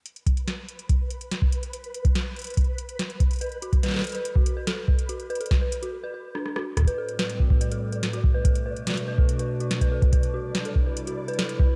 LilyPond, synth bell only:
\new Staff \with { instrumentName = "Synth bell" } { \time 4/4 \key a \dorian \tempo 4 = 143 r1 | r1 | b'16 r16 fis'16 r16 b'16 a'16 r16 b'16 r16 fis'16 r16 b'16 a'16 r16 b'16 r16 | fis'16 r16 b'16 a'16 r16 b'16 r16 fis'16 r16 b'16 b'16 r16 d'16 r16 fis'16 r16 |
r16 b'16 a'16 r16 b'16 r16 fis'16 r16 b'16 a'16 r16 b'16 r16 fis'16 r16 b'16 | a'16 r16 b'16 r16 fis'16 r16 b'16 a'16 r16 b'16 r16 fis'16 r16 b'16 a'16 r16 | b'16 r16 fis'16 r16 b'16 a'16 r16 b'16 r16 fis'16 r16 b'16 a'16 r16 b'16 r16 | }